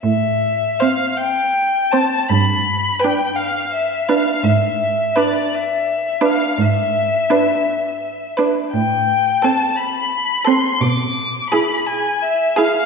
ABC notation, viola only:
X:1
M:12/8
L:1/8
Q:3/8=56
K:Am
V:1 name="Viola"
z2 C z2 C z2 D z2 D | z2 D z2 D z2 D z2 D | z2 C z2 C z2 E z2 E |]